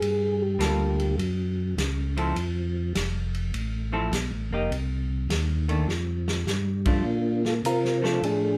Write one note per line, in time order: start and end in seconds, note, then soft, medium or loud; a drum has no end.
0.00 0.58 G2 medium
0.00 0.43 G#4 medium
0.00 ride medium
0.42 1.16 G4 medium
0.59 1.17 D2 medium
0.59 1.18 G3 medium
0.59 1.19 A#3 medium
0.59 1.19 F4 medium
0.59 1.19 A4 medium
0.59 snare medium
0.59 hi-hat pedal medium
0.59 ride medium
1.00 ride soft
1.18 1.75 F#2 medium
1.18 ride medium
1.77 2.34 C#2 medium
1.77 snare medium
1.77 hi-hat pedal soft
1.77 ride medium
2.17 2.34 F3 medium
2.17 2.35 C4 medium
2.17 2.35 E4 medium
2.17 2.35 A4 medium
2.17 ride soft
2.36 2.93 F2 medium
2.36 ride medium
2.94 3.52 F1 medium
2.94 snare medium
2.94 hi-hat pedal soft
2.94 ride medium
3.34 ride soft
3.54 4.11 A1 medium
3.54 ride medium
3.92 4.10 F3 medium
3.92 4.10 C4 medium
3.92 4.11 E4 medium
3.92 4.11 A4 medium
4.12 4.31 B1 medium
4.12 snare medium
4.12 hi-hat pedal medium
4.12 ride medium
4.31 4.51 A1 medium
4.51 4.69 F1 medium
4.51 4.70 A#3 medium
4.51 4.70 D#4 medium
4.51 4.70 G4 medium
4.70 5.28 C2 medium
4.70 ride soft
5.29 5.86 D#2 medium
5.29 snare medium
5.29 hi-hat pedal soft
5.29 ride medium
5.68 5.86 D#3 medium
5.68 5.87 A3 medium
5.68 5.87 D4 medium
5.68 ride soft
5.88 6.45 F2 medium
5.88 snare soft
6.28 snare medium
6.46 7.04 G2 medium
6.46 snare medium
6.46 hi-hat pedal medium
6.85 7.03 F3 medium
6.85 7.04 A3 medium
6.85 7.04 D4 medium
6.85 7.41 D4 medium
6.85 7.45 F4 medium
6.85 kick medium
6.85 ride medium
7.05 7.62 A#2 medium
7.45 7.55 F4 medium
7.45 7.54 A4 medium
7.45 snare soft
7.64 8.21 C3 medium
7.64 8.01 F4 medium
7.64 8.05 A#4 medium
7.64 hi-hat pedal medium
7.64 ride medium
7.84 snare soft
8.02 8.58 F3 medium
8.02 8.58 A3 medium
8.02 8.58 D4 medium
8.02 8.23 F4 medium
8.02 8.24 A4 medium
8.02 snare soft
8.22 8.58 A2 medium
8.22 8.58 D4 medium
8.22 8.58 G#4 medium
8.22 ride medium